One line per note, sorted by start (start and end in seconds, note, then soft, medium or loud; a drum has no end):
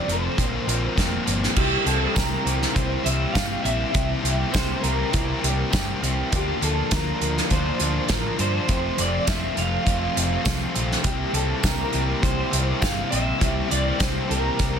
0.00 0.10 D5 medium
0.07 0.27 F1 medium
0.07 0.36 F2 medium
0.07 0.36 C3 medium
0.07 0.35 F3 medium
0.07 0.36 F3 medium
0.07 0.36 A3 loud
0.07 0.36 A3 medium
0.07 0.36 C4 medium
0.07 0.37 C4 medium
0.07 closed hi-hat soft
0.12 0.90 C5 medium
0.36 0.57 A#1 medium
0.36 0.66 A#2 medium
0.36 0.66 F3 medium
0.36 0.66 A#3 medium
0.36 0.67 A#3 loud
0.36 0.67 C4 medium
0.36 kick medium
0.36 closed hi-hat medium
0.67 0.86 A#1 medium
0.67 0.96 A#2 medium
0.67 0.95 F3 medium
0.67 0.96 F3 medium
0.67 0.96 A#3 medium
0.67 0.97 A#3 medium
0.67 0.96 C4 medium
0.67 0.97 C4 medium
0.67 closed hi-hat medium
0.90 1.25 A#4 medium
0.96 1.17 F1 medium
0.96 1.24 A#2 medium
0.96 1.25 F3 medium
0.96 1.26 A#3 medium
0.96 1.25 A#3 medium
0.96 1.26 C4 medium
0.96 kick medium
0.96 snare medium
0.96 closed hi-hat medium
1.25 1.46 G1 medium
1.25 1.54 A#2 medium
1.25 1.54 F3 medium
1.25 1.53 F3 medium
1.25 1.55 A#3 medium
1.25 1.53 A#3 medium
1.25 1.54 C4 loud
1.25 1.55 C4 medium
1.25 closed hi-hat medium
1.43 snare soft
1.53 1.75 C2 medium
1.53 1.84 C3 medium
1.53 1.83 E3 medium
1.53 1.85 G3 medium
1.53 1.84 A#3 medium
1.53 1.84 C4 medium
1.53 1.85 C4 medium
1.53 1.85 E4 loud
1.53 1.85 G4 medium
1.53 kick loud
1.53 crash medium
1.58 1.86 G4 medium
1.83 2.05 C2 medium
1.83 2.14 C3 medium
1.83 2.13 E3 medium
1.83 2.14 G3 medium
1.83 2.14 A#3 medium
1.83 2.15 C4 medium
1.83 2.15 E4 medium
1.83 2.15 G4 medium
1.83 2.15 A4 medium
1.83 closed hi-hat medium
2.13 2.35 C2 medium
2.13 2.44 C3 medium
2.13 2.43 E3 medium
2.13 2.44 G3 medium
2.13 2.44 A#3 medium
2.13 2.44 C4 medium
2.13 2.45 C4 medium
2.13 2.45 E4 medium
2.13 2.45 G4 medium
2.13 2.77 A#4 medium
2.13 kick loud
2.13 closed hi-hat medium
2.13 tambourine medium
2.18 snare loud
2.44 2.64 C2 medium
2.44 2.73 C3 medium
2.44 2.72 E3 medium
2.44 2.73 G3 medium
2.44 2.73 A#3 medium
2.44 2.73 C4 medium
2.44 2.74 E4 medium
2.44 2.74 G4 medium
2.44 closed hi-hat soft
2.62 snare soft
2.73 2.95 C2 medium
2.73 3.02 C3 medium
2.73 3.02 E3 medium
2.73 3.02 G3 medium
2.73 3.04 A#3 medium
2.73 3.03 C4 medium
2.73 3.04 C4 medium
2.73 3.03 E4 medium
2.73 3.05 G4 medium
2.73 3.04 C5 medium
2.73 kick medium
2.73 closed hi-hat medium
3.03 3.24 C2 medium
3.03 3.31 C3 medium
3.03 3.33 E3 medium
3.03 3.32 G3 medium
3.03 3.35 A#3 medium
3.03 3.32 C4 medium
3.03 3.35 C4 medium
3.03 3.33 E4 medium
3.03 3.34 G4 medium
3.03 3.32 E5 medium
3.03 closed hi-hat medium
3.33 3.54 G1 medium
3.33 3.61 C3 medium
3.33 3.62 E3 medium
3.33 3.61 G3 medium
3.33 3.64 A#3 medium
3.33 3.61 C4 medium
3.33 3.64 C4 medium
3.33 3.62 E4 medium
3.33 3.65 G4 medium
3.33 3.63 F5 loud
3.33 kick medium
3.33 snare loud
3.33 closed hi-hat medium
3.33 tambourine medium
3.62 3.83 A#1 medium
3.62 3.90 C3 medium
3.62 3.92 E3 medium
3.62 3.91 G3 medium
3.62 3.94 A#3 medium
3.62 3.91 C4 medium
3.62 3.94 C4 medium
3.62 3.91 E4 medium
3.62 3.94 G4 loud
3.62 4.52 E5 loud
3.62 closed hi-hat soft
3.91 4.13 C2 medium
3.91 4.20 C3 medium
3.91 4.22 E3 medium
3.91 4.21 G3 medium
3.91 4.24 A#3 medium
3.91 4.21 C4 medium
3.91 4.24 C4 medium
3.91 4.21 E4 medium
3.91 4.24 G4 loud
3.91 kick loud
3.91 closed hi-hat medium
4.21 4.42 C2 medium
4.21 4.49 C3 medium
4.21 4.51 E3 medium
4.21 4.50 G3 medium
4.21 4.52 A#3 medium
4.21 4.50 C4 medium
4.21 4.52 C4 medium
4.21 4.51 E4 medium
4.21 closed hi-hat medium
4.26 4.53 G4 medium
4.50 4.79 C3 medium
4.50 4.82 E3 medium
4.50 4.80 G3 medium
4.50 4.83 A#3 medium
4.50 4.80 C4 medium
4.50 4.83 C4 medium
4.50 4.81 E4 medium
4.50 4.84 C5 medium
4.50 tambourine medium
4.54 4.73 C2 medium
4.54 4.83 G4 medium
4.54 kick loud
4.54 snare loud
4.54 closed hi-hat medium
4.80 5.02 C2 medium
4.80 5.09 C3 medium
4.80 5.11 E3 medium
4.80 5.09 G3 medium
4.80 5.12 A#3 medium
4.80 5.10 C4 medium
4.80 5.12 C4 medium
4.80 5.11 E4 medium
4.80 5.97 A#4 medium
4.80 closed hi-hat soft
4.85 5.13 G4 medium
5.10 5.39 C3 medium
5.10 5.40 E3 medium
5.10 5.39 G3 medium
5.10 5.41 A#3 medium
5.10 5.40 C4 medium
5.10 5.42 C4 medium
5.10 5.40 E4 loud
5.10 closed hi-hat medium
5.14 5.33 C2 medium
5.14 5.42 G4 medium
5.14 kick loud
5.40 5.62 C2 medium
5.40 5.69 C3 medium
5.40 5.70 E3 medium
5.40 5.70 G3 medium
5.40 5.71 A#3 medium
5.40 5.71 C4 medium
5.40 5.71 E4 medium
5.40 5.72 G4 medium
5.40 closed hi-hat medium
5.71 5.92 G1 medium
5.71 6.00 C3 medium
5.71 6.00 E3 medium
5.71 6.01 G3 medium
5.71 6.01 A#3 medium
5.71 6.01 C4 medium
5.71 6.02 C4 medium
5.71 6.02 E4 medium
5.71 6.02 G4 loud
5.71 kick medium
5.71 snare medium
5.71 closed hi-hat medium
5.71 tambourine medium
6.01 6.21 C2 medium
6.01 6.29 C3 medium
6.01 6.29 E3 medium
6.01 6.30 G3 medium
6.01 6.30 A#3 medium
6.01 6.30 C4 medium
6.01 6.30 E4 medium
6.01 6.30 G4 medium
6.01 closed hi-hat medium
6.31 6.51 D2 medium
6.31 6.59 D3 medium
6.31 6.60 F3 medium
6.31 6.61 F3 medium
6.31 6.60 A#3 loud
6.31 6.61 A#3 medium
6.31 6.61 D4 medium
6.31 6.62 D4 medium
6.31 6.63 F4 medium
6.31 kick medium
6.31 closed hi-hat medium
6.36 6.63 G4 medium
6.60 6.80 D2 medium
6.60 6.90 D3 medium
6.60 6.92 F3 medium
6.60 6.91 F3 medium
6.60 6.91 A#3 medium
6.60 6.92 D4 medium
6.60 6.93 F4 medium
6.60 6.93 A4 medium
6.60 closed hi-hat medium
6.91 7.10 D2 medium
6.91 7.19 D3 medium
6.91 7.20 F3 medium
6.91 7.21 A#3 medium
6.91 7.20 A#3 medium
6.91 7.21 D4 medium
6.91 7.20 D4 loud
6.91 7.22 F4 medium
6.91 7.47 A#4 medium
6.91 kick loud
6.91 snare loud
6.91 closed hi-hat medium
6.91 tambourine medium
7.20 7.40 D2 medium
7.20 7.49 D3 medium
7.20 7.50 F3 medium
7.20 7.50 A#3 loud
7.20 7.51 A#3 medium
7.20 7.51 D4 medium
7.20 7.52 F4 medium
7.20 closed hi-hat medium
7.37 snare soft
7.50 7.69 D2 medium
7.50 7.79 D3 medium
7.50 7.79 F3 medium
7.50 7.79 A#3 medium
7.50 7.80 A#3 medium
7.50 7.79 D4 medium
7.50 7.81 D4 medium
7.50 7.82 F4 medium
7.50 8.12 C5 medium
7.50 kick medium
7.50 closed hi-hat medium
7.80 7.98 D2 medium
7.80 8.08 D3 medium
7.80 8.09 F3 medium
7.80 8.08 F3 medium
7.80 8.09 A#3 medium
7.80 8.10 D4 loud
7.80 8.09 D4 medium
7.80 8.10 F4 medium
7.80 closed hi-hat medium
8.08 8.28 A1 medium
8.08 8.37 D3 medium
8.08 8.38 F3 medium
8.08 8.37 F3 medium
8.08 8.37 A#3 medium
8.08 8.39 A#3 medium
8.08 8.40 D4 medium
8.08 8.38 D4 medium
8.08 8.40 F4 medium
8.08 8.37 A#4 medium
8.08 kick loud
8.08 snare medium
8.08 closed hi-hat medium
8.08 tambourine medium
8.38 8.58 G2 medium
8.38 8.66 D3 medium
8.38 8.66 F3 medium
8.38 8.67 F3 medium
8.38 8.66 A#3 medium
8.38 8.67 A#3 medium
8.38 8.67 D4 medium
8.38 8.68 F4 medium
8.38 9.00 C5 medium
8.38 closed hi-hat medium
8.67 8.88 F1 medium
8.67 8.95 F2 medium
8.67 8.96 C3 medium
8.67 8.97 F3 medium
8.67 8.96 A3 medium
8.67 8.97 A3 medium
8.67 8.97 C4 loud
8.67 8.98 C4 medium
8.67 8.97 F4 medium
8.67 kick loud
8.67 closed hi-hat medium
8.97 9.17 F1 medium
8.97 9.25 F2 medium
8.97 9.26 C3 medium
8.97 9.26 F3 medium
8.97 9.25 A3 medium
8.97 9.26 A3 medium
8.97 9.26 C4 medium
8.97 9.27 C4 loud
8.97 9.26 F4 medium
8.97 9.28 D5 medium
8.97 closed hi-hat medium
9.26 9.47 F1 medium
9.26 9.54 F2 medium
9.26 9.55 C3 medium
9.26 9.55 F3 medium
9.26 9.54 A3 medium
9.26 9.56 A3 medium
9.26 9.56 C4 medium
9.26 9.57 C4 medium
9.26 9.56 F4 medium
9.26 9.55 E5 medium
9.26 kick loud
9.26 snare loud
9.26 closed hi-hat medium
9.26 tambourine loud
9.55 9.76 F1 medium
9.55 9.83 F2 medium
9.55 9.83 C3 medium
9.55 9.84 F3 medium
9.55 9.85 A3 medium
9.55 9.84 A3 medium
9.55 9.87 C4 medium
9.55 9.86 C4 medium
9.55 9.86 F4 medium
9.55 10.72 F5 medium
9.55 closed hi-hat soft
9.84 10.06 F1 medium
9.84 10.13 F2 medium
9.84 10.13 C3 medium
9.84 10.13 F3 medium
9.84 10.14 A3 medium
9.84 10.16 C4 medium
9.84 10.15 C4 medium
9.84 10.15 F4 medium
9.84 kick medium
9.84 closed hi-hat medium
10.14 10.35 F1 medium
10.14 10.42 F2 medium
10.14 10.43 C3 medium
10.14 10.43 F3 medium
10.14 10.43 A3 medium
10.14 10.45 C4 medium
10.14 10.45 F4 medium
10.14 closed hi-hat medium
10.43 10.64 C2 medium
10.43 10.72 F2 medium
10.43 10.73 C3 medium
10.43 10.73 F3 medium
10.43 10.73 A3 medium
10.43 10.75 C4 medium
10.43 10.75 F4 medium
10.43 kick medium
10.43 snare medium
10.43 closed hi-hat medium
10.43 tambourine medium
10.73 10.94 A#1 medium
10.73 11.02 F2 medium
10.73 11.02 C3 medium
10.73 11.02 F3 medium
10.73 11.02 A3 medium
10.73 11.03 A3 medium
10.73 11.04 C4 medium
10.73 11.03 F4 medium
10.73 closed hi-hat medium
10.92 snare soft
11.03 11.23 C2 medium
11.03 11.32 C3 medium
11.03 11.33 E3 medium
11.03 11.32 G3 medium
11.03 11.34 A#3 medium
11.03 11.33 C4 medium
11.03 11.35 C4 medium
11.03 11.33 E4 loud
11.03 11.35 G4 medium
11.03 11.33 G4 medium
11.03 kick loud
11.03 closed hi-hat medium
11.32 11.52 C2 medium
11.32 11.61 C3 medium
11.32 11.63 E3 medium
11.32 11.62 G3 medium
11.32 11.64 A#3 medium
11.32 11.62 C4 medium
11.32 11.65 C4 medium
11.32 11.62 E4 medium
11.32 11.65 G4 medium
11.32 11.65 A4 medium
11.32 closed hi-hat medium
11.61 11.83 C2 medium
11.61 11.91 C3 medium
11.61 11.92 E3 medium
11.61 11.91 G3 medium
11.61 11.93 A#3 medium
11.61 11.92 C4 medium
11.61 11.94 C4 medium
11.61 11.91 E4 medium
11.61 kick loud
11.61 snare loud
11.61 closed hi-hat medium
11.61 tambourine loud
11.65 11.95 G4 medium
11.65 12.20 A#4 medium
11.91 12.12 C2 medium
11.91 12.19 C3 medium
11.91 12.22 E3 medium
11.91 12.21 G3 medium
11.91 12.23 A#3 medium
11.91 12.21 C4 medium
11.91 12.23 C4 loud
11.91 12.21 E4 medium
11.91 12.24 G4 loud
11.91 closed hi-hat soft
12.21 12.42 C2 medium
12.21 12.49 C3 medium
12.21 12.50 E3 medium
12.21 12.50 G3 medium
12.21 12.52 A#3 medium
12.21 12.50 C4 medium
12.21 12.52 C4 medium
12.21 12.50 E4 medium
12.21 12.77 C5 medium
12.21 kick medium
12.21 closed hi-hat medium
12.25 12.53 G4 medium
12.50 12.71 C2 medium
12.50 12.79 C3 medium
12.50 12.80 E3 medium
12.50 12.80 G3 medium
12.50 12.82 A#3 medium
12.50 12.80 C4 medium
12.50 12.82 C4 medium
12.50 12.81 E4 medium
12.50 12.82 G4 medium
12.50 closed hi-hat medium
12.81 13.01 G1 medium
12.81 13.08 C3 medium
12.81 13.09 E3 medium
12.81 13.09 G3 medium
12.81 13.11 A#3 medium
12.81 13.09 C4 medium
12.81 13.10 C4 medium
12.81 13.10 E4 loud
12.81 13.11 G4 medium
12.81 13.10 F5 loud
12.81 kick medium
12.81 snare medium
12.81 closed hi-hat medium
12.81 tambourine medium
13.10 13.31 A#1 medium
13.10 13.38 C3 medium
13.10 13.39 E3 medium
13.10 13.38 G3 medium
13.10 13.41 A#3 medium
13.10 13.39 C4 medium
13.10 13.41 C4 medium
13.10 13.39 E4 medium
13.10 13.41 G4 medium
13.10 13.71 E5 loud
13.10 closed hi-hat medium
13.39 13.60 C2 medium
13.39 13.67 C3 medium
13.39 13.69 E3 medium
13.39 13.68 G3 medium
13.39 13.71 A#3 medium
13.39 13.68 C4 medium
13.39 13.70 C4 medium
13.39 13.68 E4 loud
13.39 13.71 G4 medium
13.39 kick loud
13.39 closed hi-hat medium
13.68 13.90 C2 medium
13.68 13.97 C3 medium
13.68 13.98 E3 medium
13.68 13.98 G3 medium
13.68 14.00 A#3 medium
13.68 13.98 C4 medium
13.68 14.00 C4 medium
13.68 13.98 E4 medium
13.68 14.00 G4 medium
13.68 14.01 D5 medium
13.68 closed hi-hat medium
13.98 14.19 C2 medium
13.98 14.27 C3 medium
13.98 14.29 E3 medium
13.98 14.27 G3 medium
13.98 14.31 A#3 medium
13.98 14.28 C4 medium
13.98 14.31 C4 medium
13.98 14.28 E4 medium
13.98 14.31 G4 medium
13.98 14.29 C5 medium
13.98 kick loud
13.98 snare loud
13.98 closed hi-hat medium
13.98 tambourine medium
14.28 14.48 C2 medium
14.28 14.57 C3 medium
14.28 14.57 E3 medium
14.28 14.57 G3 medium
14.28 14.58 A#3 medium
14.28 14.58 C4 medium
14.28 14.58 E4 medium
14.28 14.59 G4 loud
14.28 14.79 A#4 medium
14.28 closed hi-hat soft
14.58 14.78 C2 medium
14.58 14.79 C3 medium
14.58 14.79 E3 medium
14.58 14.79 G3 medium
14.58 14.79 A#3 medium
14.58 14.79 C4 medium
14.58 14.79 E4 medium
14.58 14.79 G4 medium
14.58 kick medium
14.58 closed hi-hat medium